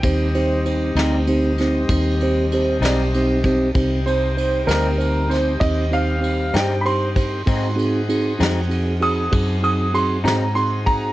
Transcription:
<<
  \new Staff \with { instrumentName = "Upright piano" } { \time 12/8 \key aes \lydian \tempo 4. = 65 g''2 r1 | r8 c''4 bes'4 c''8 ees''8 f''4 g''8 <b'' c'''>4~ | <b'' c'''>2 r8 ees'''8 r8 ees'''8 c'''8 bes''8 c'''8 bes''8 | }
  \new Staff \with { instrumentName = "Tine electric piano" } { \time 12/8 \key aes \lydian <c' ees' g' c''>8 <c' ees' g' c''>8 <c' ees' g' c''>8 <c' ees' g' c''>8 <c' ees' g' c''>8 <c' ees' g' c''>8 <c' ees' g' c''>8 <c' ees' g' c''>8 <c' ees' g' c''>8 <c' ees' g' d''>8 <c' ees' g' c''>8 <c' ees' g' c''>8 | <c' ees' g' c''>8 <c' ees' g' c''>8 <c' ees' g' c''>8 <c' ees' g' c''>8 <c' ees' g' c''>8 <c' ees' g' c''>8 <c' ees' g' c''>8 <c' ees' g' c''>8 <c' ees' g' c''>8 <c' ees' g' c''>8 <c' ees' g' c''>8 <c' ees' g' c''>8 | <c' ees' ges' aes'>8 <c' ees' ges' aes'>8 <c' ees' ges' aes'>8 <c' ees' ges' aes'>8 <c' ees' ges' aes'>8 <c' ees' ges' aes'>8 <c' ees' ges' aes'>8 <c' ees' ges' aes'>8 <c' ees' ges' aes'>8 <c' ees' ges' aes'>8 <c' ees' ges' aes'>8 <c' ees' ges' aes'>8 | }
  \new Staff \with { instrumentName = "Tonewheel organ" } { \time 12/8 \key aes \lydian <g c' ees'>1. | <g c' ees' g'>1. | <c' ees' ges' aes'>1. | }
  \new Staff \with { instrumentName = "Clean electric guitar" } { \time 12/8 \key aes \lydian r4. <c g c' ees'>8 r2 r8 <c g c' ees'>8 r4 | r4. <c g c' ees'>8 r2 r8 <c g c' ees'>8 r4 | <aes, ges c' ees'>8 r4 <aes, ges c' ees'>8 r2 r8 <aes, ges c' ees'>8 r4 | }
  \new Staff \with { instrumentName = "Fingered electric bass" } { \clef bass \time 12/8 \key aes \lydian ees,4. d,4. ees,4. b,,4. | c,4. d,4. ees,4. g,4. | aes,4. f,4. ges,4. aes,4. | }
  \new DrumStaff \with { instrumentName = "Drums" } \drummode { \time 12/8 <bd cymr>8 cymr8 cymr8 <cymr sn>8 cymr8 <cymr sn>8 <bd cymr>8 cymr8 cymr8 <cymr sn>8 cymr8 <bd cymr>8 | <bd cymr>8 cymr8 cymr8 <cymr sn>8 cymr8 <cymr sn>8 <bd cymr>8 cymr8 cymr8 <cymr sn>8 cymr8 <bd cymr>8 | <bd cymr>8 cymr8 cymr8 <cymr sn>8 cymr8 cymr8 <bd cymr>8 cymr8 cymr8 <cymr sn>8 cymr8 <bd cymr>8 | }
>>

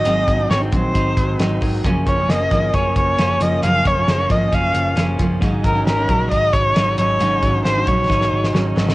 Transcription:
<<
  \new Staff \with { instrumentName = "Erhu" } { \time 4/4 \key aes \mixolydian \tempo 4 = 134 ees''4 des''8 c''2 r8 | r8 des''8 ees''4 des''8 des''4 ees''8 | f''8 des''4 ees''8 f''4 r4 | r8 bes'8 bes'4 ees''8 des''4 des''8~ |
des''4 c''8 des''2 r8 | }
  \new Staff \with { instrumentName = "Steel-string acoustic guitar" } { \time 4/4 \key aes \mixolydian <aes, ees ges c' ees'>8. <ges c' ees'>8 <ges c' ees'>16 <ees ges c' ees'>4. <ees ges c' ees'>8 <ees ges c' ees'>8 | <ges, des f bes des'>8. <f bes des'>8 <f bes des'>16 <des f bes des'>4. <des f bes des'>8 <des f bes des'>8 | <ges, des f bes des'>8. <f bes des'>8 <f bes des'>16 <des f bes des'>4. <des f bes des'>8 <des f bes des'>8 | <aes, des ges des' ees'>8. <ges des' ees'>8 <ges des' ees'>16 <des ges des' ees'>4. <des ges des' ees'>8 <des ges des' ees'>8 |
<aes, des ges des' ees'>8. <ges des' ees'>8 <ges des' ees'>16 <des ges des' ees'>4. <des ges des' ees'>8 <des ges des' ees'>8 | }
  \new Staff \with { instrumentName = "Clean electric guitar" } { \clef bass \time 4/4 \key aes \mixolydian <aes, ges ees'>8 ges8 c'8 ges8 ees'8 ges8 ees'8 ges8 | <ges, des'>8 f8 bes8 f8 des'8 f8 des'8 f8 | <ges, des'>8 f8 aes16 bes16 f8 des'8 f8 des'8 f8 | <aes, ees'>8 ges8 des'8 ges8 ees'8 ges8 ees'8 ges8 |
<aes, ees'>8 ges8 des'8 ges8 ees'8 ges8 ees'8 ges8 | }
  \new Staff \with { instrumentName = "Picked electric bass" } { \clef bass \time 4/4 \key aes \mixolydian aes,,8 aes,,8 aes,,8 bes,,8 aes,,8 aes,,8 aes,,8 aes,,8 | ges,,8 ges,,8 ges,,8 aes,,8 ges,,8 ges,,8 ges,,8 ges,,8 | ges,,8 ges,,8 ges,,8 aes,,8 ges,,8 ges,,8 ges,,8 ges,,8 | aes,,8 aes,,8 aes,,8 bes,,8 aes,,8 aes,,8 aes,,8 aes,,8 |
aes,,8 aes,,8 aes,,8 bes,,8 aes,,8 aes,,8 aes,,8 aes,,8 | }
  \new DrumStaff \with { instrumentName = "Drums" } \drummode { \time 4/4 hh8 <hh bd>8 <hh sn>8 <hh bd>8 <hh bd>8 <hh bd>8 <hh sn>8 <hho bd>8 | <hh bd>8 <hh bd>8 <hh sn>8 <hh bd sn>8 <hh bd>8 <hh bd>8 <hh sn>8 hh8 | hh8 <hh bd>8 <hh sn>8 <hh bd>8 <hh bd>8 hh8 <hh sn>8 <hh bd>8 | <hh bd>8 <hh bd>8 <hh sn>8 <hh bd>8 <hh bd>8 <hh bd>8 <hh sn>8 hh8 |
hh8 <hh bd>8 <hh sn>8 <hh bd>8 <bd sn>16 sn8 sn16 sn8 sn16 sn16 | }
>>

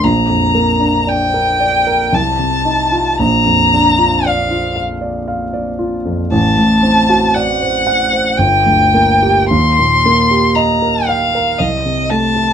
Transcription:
<<
  \new Staff \with { instrumentName = "Violin" } { \time 3/4 \key bes \major \tempo 4 = 58 bes''4 g''4 a''4 | bes''4 f''8 r4. | a''4 fis''4 g''4 | c'''4 bes''8 f''8 ees''8 a''8 | }
  \new Staff \with { instrumentName = "Grand piano" } { \time 3/4 \key bes \major bes,,16 f,16 bes16 d'16 d''16 bes'16 d''16 bes'16 c,16 c16 ees'16 f'16 | bes,,16 f,16 d'16 f'16 d''16 f'16 f''16 d''16 f''16 d''16 f'16 f,16 | a,,16 a,16 c'16 fis'16 d''16 c''16 fis''16 c''16 g,,16 d,16 bes16 g'16 | ees,16 bes,16 bes16 g'16 ees''16 bes'16 g''16 bes'16 c,16 c16 a16 a'16 | }
>>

